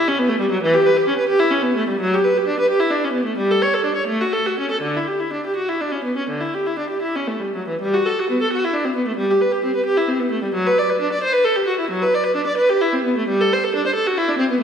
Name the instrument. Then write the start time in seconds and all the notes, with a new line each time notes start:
viola
0.08 C#4
0.19 B3
0.29 A3
0.40 G3
0.51 F#3
0.63 E3
0.74 G4
0.86 B4
0.97 G4
1.08 C#4
1.18 B4
1.29 G4
1.40 E4
1.51 C#4
1.62 B3
1.77 A3
1.89 G3
2.00 F#3
2.14 G4
2.24 B4
2.37 G4
2.48 D4
2.60 B4
2.70 G4
2.80 E4
2.90 D4
3.04 C#4
3.13 B3
3.25 A3
3.38 G3
3.51 A4
3.62 C#5
3.74 A4
3.85 D4
3.96 C#5
4.07 A3
4.21 F#4
4.33 A4
4.46 F#4
4.59 C#4
4.71 A4
4.82 D3
4.96 E4
5.07 G4
5.20 E4
5.33 D4
5.46 G4
5.56 F#4
5.69 E4
5.81 D4
5.91 C#4
6.04 B3
6.17 C#4
6.29 D3
6.41 E4
6.54 G4
6.67 E4
6.79 D4
6.90 G4
7.02 E4
7.16 C#4
7.28 A3
7.40 G3
7.56 F#3
7.68 E3
7.81 G3
7.94 F#4
8.06 A4
8.19 F#4
8.30 B3
8.42 A4
8.52 F#4
8.64 E4
8.74 D4
8.85 C4
8.96 B3
9.08 A3
9.16 G3
9.30 G4
9.41 B4
9.52 G4
9.65 C4
9.75 B4
9.86 G4
9.97 E4
10.08 C4
10.20 B3
10.31 A3
10.43 G3
10.54 F#3
10.67 B4
10.78 D5
10.90 B4
11.01 D4
11.13 D5
11.23 C5
11.33 B4
11.45 A4
11.56 G4
11.67 F#4
11.79 E4
11.91 F#3
12.02 B4
12.14 D5
12.24 B4
12.36 D4
12.47 D5
12.57 B4
12.69 G4
12.81 E4
12.93 C4
13.05 B3
13.17 A3
13.28 G3
13.41 A4
13.53 C5
13.64 A4
13.75 D4
13.87 C5
13.95 A4
14.07 F#4
14.18 E4
14.29 D4
14.38 C4
14.50 B3